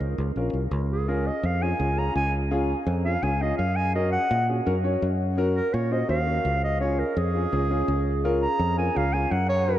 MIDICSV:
0, 0, Header, 1, 4, 480
1, 0, Start_track
1, 0, Tempo, 357995
1, 972, Time_signature, 4, 2, 24, 8
1, 13125, End_track
2, 0, Start_track
2, 0, Title_t, "Clarinet"
2, 0, Program_c, 0, 71
2, 0, Note_on_c, 0, 70, 72
2, 450, Note_off_c, 0, 70, 0
2, 1217, Note_on_c, 0, 68, 85
2, 1450, Note_on_c, 0, 70, 75
2, 1470, Note_off_c, 0, 68, 0
2, 1701, Note_on_c, 0, 75, 76
2, 1721, Note_off_c, 0, 70, 0
2, 1948, Note_on_c, 0, 77, 82
2, 1968, Note_off_c, 0, 75, 0
2, 2173, Note_on_c, 0, 80, 75
2, 2193, Note_off_c, 0, 77, 0
2, 2660, Note_on_c, 0, 82, 76
2, 2680, Note_off_c, 0, 80, 0
2, 2890, Note_off_c, 0, 82, 0
2, 2897, Note_on_c, 0, 80, 90
2, 3128, Note_off_c, 0, 80, 0
2, 4088, Note_on_c, 0, 77, 90
2, 4329, Note_on_c, 0, 80, 78
2, 4350, Note_off_c, 0, 77, 0
2, 4578, Note_on_c, 0, 75, 78
2, 4598, Note_off_c, 0, 80, 0
2, 4788, Note_off_c, 0, 75, 0
2, 4796, Note_on_c, 0, 77, 81
2, 5044, Note_on_c, 0, 80, 86
2, 5064, Note_off_c, 0, 77, 0
2, 5281, Note_off_c, 0, 80, 0
2, 5296, Note_on_c, 0, 75, 80
2, 5515, Note_off_c, 0, 75, 0
2, 5523, Note_on_c, 0, 78, 98
2, 5993, Note_off_c, 0, 78, 0
2, 7442, Note_on_c, 0, 70, 96
2, 7688, Note_on_c, 0, 73, 80
2, 7709, Note_off_c, 0, 70, 0
2, 7938, Note_on_c, 0, 75, 75
2, 7958, Note_off_c, 0, 73, 0
2, 8168, Note_off_c, 0, 75, 0
2, 8176, Note_on_c, 0, 77, 87
2, 8873, Note_off_c, 0, 77, 0
2, 8901, Note_on_c, 0, 75, 78
2, 9117, Note_off_c, 0, 75, 0
2, 9125, Note_on_c, 0, 73, 77
2, 9375, Note_on_c, 0, 70, 80
2, 9395, Note_off_c, 0, 73, 0
2, 9618, Note_on_c, 0, 68, 95
2, 9638, Note_off_c, 0, 70, 0
2, 11012, Note_off_c, 0, 68, 0
2, 11290, Note_on_c, 0, 82, 94
2, 11757, Note_off_c, 0, 82, 0
2, 11771, Note_on_c, 0, 80, 79
2, 12026, Note_on_c, 0, 77, 93
2, 12046, Note_off_c, 0, 80, 0
2, 12243, Note_on_c, 0, 80, 80
2, 12263, Note_off_c, 0, 77, 0
2, 12486, Note_on_c, 0, 78, 83
2, 12506, Note_off_c, 0, 80, 0
2, 12712, Note_off_c, 0, 78, 0
2, 12720, Note_on_c, 0, 73, 100
2, 13125, Note_off_c, 0, 73, 0
2, 13125, End_track
3, 0, Start_track
3, 0, Title_t, "Upright piano"
3, 0, Program_c, 1, 0
3, 491, Note_on_c, 1, 61, 73
3, 495, Note_on_c, 1, 65, 68
3, 498, Note_on_c, 1, 70, 81
3, 743, Note_off_c, 1, 61, 0
3, 745, Note_off_c, 1, 65, 0
3, 747, Note_off_c, 1, 70, 0
3, 1447, Note_on_c, 1, 61, 78
3, 1450, Note_on_c, 1, 65, 72
3, 1452, Note_on_c, 1, 68, 86
3, 1702, Note_off_c, 1, 61, 0
3, 1703, Note_off_c, 1, 65, 0
3, 1704, Note_off_c, 1, 68, 0
3, 2164, Note_on_c, 1, 61, 62
3, 2170, Note_on_c, 1, 65, 61
3, 2177, Note_on_c, 1, 68, 67
3, 2252, Note_off_c, 1, 61, 0
3, 2256, Note_off_c, 1, 65, 0
3, 2259, Note_off_c, 1, 68, 0
3, 2395, Note_on_c, 1, 61, 70
3, 2406, Note_on_c, 1, 65, 64
3, 2407, Note_on_c, 1, 68, 77
3, 2488, Note_off_c, 1, 61, 0
3, 2493, Note_off_c, 1, 65, 0
3, 2494, Note_off_c, 1, 68, 0
3, 2643, Note_on_c, 1, 61, 59
3, 2649, Note_on_c, 1, 68, 74
3, 2651, Note_on_c, 1, 65, 57
3, 2900, Note_off_c, 1, 61, 0
3, 2903, Note_off_c, 1, 68, 0
3, 2904, Note_off_c, 1, 65, 0
3, 3357, Note_on_c, 1, 61, 91
3, 3366, Note_on_c, 1, 65, 90
3, 3369, Note_on_c, 1, 68, 102
3, 3617, Note_off_c, 1, 61, 0
3, 3622, Note_off_c, 1, 65, 0
3, 3623, Note_off_c, 1, 68, 0
3, 4086, Note_on_c, 1, 61, 61
3, 4086, Note_on_c, 1, 65, 55
3, 4091, Note_on_c, 1, 68, 72
3, 4173, Note_off_c, 1, 61, 0
3, 4173, Note_off_c, 1, 65, 0
3, 4176, Note_off_c, 1, 68, 0
3, 4324, Note_on_c, 1, 61, 73
3, 4327, Note_on_c, 1, 65, 63
3, 4335, Note_on_c, 1, 68, 84
3, 4412, Note_off_c, 1, 61, 0
3, 4414, Note_off_c, 1, 65, 0
3, 4418, Note_off_c, 1, 68, 0
3, 4566, Note_on_c, 1, 61, 60
3, 4569, Note_on_c, 1, 65, 55
3, 4573, Note_on_c, 1, 68, 73
3, 4809, Note_off_c, 1, 61, 0
3, 4811, Note_off_c, 1, 65, 0
3, 4813, Note_off_c, 1, 68, 0
3, 5289, Note_on_c, 1, 61, 78
3, 5292, Note_on_c, 1, 66, 74
3, 5302, Note_on_c, 1, 70, 91
3, 5543, Note_off_c, 1, 61, 0
3, 5544, Note_off_c, 1, 66, 0
3, 5549, Note_off_c, 1, 70, 0
3, 6024, Note_on_c, 1, 61, 64
3, 6027, Note_on_c, 1, 66, 63
3, 6027, Note_on_c, 1, 68, 64
3, 6102, Note_off_c, 1, 61, 0
3, 6104, Note_off_c, 1, 66, 0
3, 6104, Note_off_c, 1, 68, 0
3, 6247, Note_on_c, 1, 61, 98
3, 6249, Note_on_c, 1, 66, 79
3, 6254, Note_on_c, 1, 70, 94
3, 6334, Note_off_c, 1, 61, 0
3, 6335, Note_off_c, 1, 66, 0
3, 6337, Note_off_c, 1, 70, 0
3, 6485, Note_on_c, 1, 61, 79
3, 6487, Note_on_c, 1, 66, 67
3, 6492, Note_on_c, 1, 73, 85
3, 6741, Note_off_c, 1, 61, 0
3, 6742, Note_off_c, 1, 66, 0
3, 6744, Note_off_c, 1, 73, 0
3, 7202, Note_on_c, 1, 61, 86
3, 7207, Note_on_c, 1, 66, 90
3, 7214, Note_on_c, 1, 70, 105
3, 7459, Note_off_c, 1, 61, 0
3, 7462, Note_off_c, 1, 66, 0
3, 7465, Note_off_c, 1, 70, 0
3, 7920, Note_on_c, 1, 61, 64
3, 7931, Note_on_c, 1, 66, 55
3, 7933, Note_on_c, 1, 72, 71
3, 8010, Note_off_c, 1, 61, 0
3, 8016, Note_off_c, 1, 66, 0
3, 8017, Note_off_c, 1, 72, 0
3, 8150, Note_on_c, 1, 61, 72
3, 8156, Note_on_c, 1, 66, 71
3, 8164, Note_on_c, 1, 72, 85
3, 8245, Note_off_c, 1, 61, 0
3, 8248, Note_off_c, 1, 66, 0
3, 8252, Note_off_c, 1, 72, 0
3, 8401, Note_on_c, 1, 61, 65
3, 8401, Note_on_c, 1, 66, 57
3, 8412, Note_on_c, 1, 70, 66
3, 8647, Note_off_c, 1, 61, 0
3, 8647, Note_off_c, 1, 66, 0
3, 8652, Note_off_c, 1, 70, 0
3, 9119, Note_on_c, 1, 61, 72
3, 9126, Note_on_c, 1, 68, 85
3, 9127, Note_on_c, 1, 65, 68
3, 9377, Note_off_c, 1, 61, 0
3, 9381, Note_off_c, 1, 65, 0
3, 9381, Note_off_c, 1, 68, 0
3, 9846, Note_on_c, 1, 61, 63
3, 9850, Note_on_c, 1, 65, 56
3, 9852, Note_on_c, 1, 68, 71
3, 9933, Note_off_c, 1, 61, 0
3, 9935, Note_off_c, 1, 65, 0
3, 9936, Note_off_c, 1, 68, 0
3, 10078, Note_on_c, 1, 61, 76
3, 10090, Note_on_c, 1, 65, 68
3, 10091, Note_on_c, 1, 68, 84
3, 10169, Note_off_c, 1, 61, 0
3, 10175, Note_off_c, 1, 65, 0
3, 10175, Note_off_c, 1, 68, 0
3, 10320, Note_on_c, 1, 61, 75
3, 10332, Note_on_c, 1, 65, 66
3, 10334, Note_on_c, 1, 68, 85
3, 10578, Note_off_c, 1, 61, 0
3, 10584, Note_off_c, 1, 65, 0
3, 10585, Note_off_c, 1, 68, 0
3, 11048, Note_on_c, 1, 61, 89
3, 11051, Note_on_c, 1, 65, 87
3, 11060, Note_on_c, 1, 70, 105
3, 11302, Note_off_c, 1, 61, 0
3, 11304, Note_off_c, 1, 65, 0
3, 11308, Note_off_c, 1, 70, 0
3, 11754, Note_on_c, 1, 61, 62
3, 11758, Note_on_c, 1, 65, 59
3, 11770, Note_on_c, 1, 70, 70
3, 11847, Note_off_c, 1, 61, 0
3, 11849, Note_off_c, 1, 65, 0
3, 11855, Note_off_c, 1, 70, 0
3, 11984, Note_on_c, 1, 61, 75
3, 11996, Note_on_c, 1, 65, 64
3, 11996, Note_on_c, 1, 68, 83
3, 12082, Note_off_c, 1, 61, 0
3, 12088, Note_off_c, 1, 65, 0
3, 12088, Note_off_c, 1, 68, 0
3, 12247, Note_on_c, 1, 61, 64
3, 12252, Note_on_c, 1, 65, 58
3, 12259, Note_on_c, 1, 68, 68
3, 12489, Note_off_c, 1, 61, 0
3, 12492, Note_off_c, 1, 65, 0
3, 12496, Note_off_c, 1, 68, 0
3, 12970, Note_on_c, 1, 61, 77
3, 12973, Note_on_c, 1, 66, 74
3, 12977, Note_on_c, 1, 70, 89
3, 13125, Note_off_c, 1, 61, 0
3, 13125, Note_off_c, 1, 66, 0
3, 13125, Note_off_c, 1, 70, 0
3, 13125, End_track
4, 0, Start_track
4, 0, Title_t, "Fingered electric bass"
4, 0, Program_c, 2, 33
4, 5, Note_on_c, 2, 37, 78
4, 200, Note_off_c, 2, 37, 0
4, 244, Note_on_c, 2, 37, 83
4, 439, Note_off_c, 2, 37, 0
4, 480, Note_on_c, 2, 34, 75
4, 701, Note_off_c, 2, 34, 0
4, 715, Note_on_c, 2, 36, 73
4, 939, Note_off_c, 2, 36, 0
4, 955, Note_on_c, 2, 37, 98
4, 1730, Note_off_c, 2, 37, 0
4, 1923, Note_on_c, 2, 41, 98
4, 2311, Note_off_c, 2, 41, 0
4, 2408, Note_on_c, 2, 37, 97
4, 2794, Note_off_c, 2, 37, 0
4, 2889, Note_on_c, 2, 37, 93
4, 3658, Note_off_c, 2, 37, 0
4, 3842, Note_on_c, 2, 41, 104
4, 4230, Note_off_c, 2, 41, 0
4, 4326, Note_on_c, 2, 37, 93
4, 4713, Note_off_c, 2, 37, 0
4, 4811, Note_on_c, 2, 42, 87
4, 5580, Note_off_c, 2, 42, 0
4, 5775, Note_on_c, 2, 46, 108
4, 6158, Note_off_c, 2, 46, 0
4, 6257, Note_on_c, 2, 42, 95
4, 6639, Note_off_c, 2, 42, 0
4, 6735, Note_on_c, 2, 42, 99
4, 7502, Note_off_c, 2, 42, 0
4, 7693, Note_on_c, 2, 46, 101
4, 8077, Note_off_c, 2, 46, 0
4, 8166, Note_on_c, 2, 39, 96
4, 8553, Note_off_c, 2, 39, 0
4, 8645, Note_on_c, 2, 37, 93
4, 9416, Note_off_c, 2, 37, 0
4, 9608, Note_on_c, 2, 41, 104
4, 9994, Note_off_c, 2, 41, 0
4, 10091, Note_on_c, 2, 37, 95
4, 10476, Note_off_c, 2, 37, 0
4, 10566, Note_on_c, 2, 37, 102
4, 11336, Note_off_c, 2, 37, 0
4, 11523, Note_on_c, 2, 41, 111
4, 11910, Note_off_c, 2, 41, 0
4, 12019, Note_on_c, 2, 37, 94
4, 12400, Note_off_c, 2, 37, 0
4, 12487, Note_on_c, 2, 42, 95
4, 13125, Note_off_c, 2, 42, 0
4, 13125, End_track
0, 0, End_of_file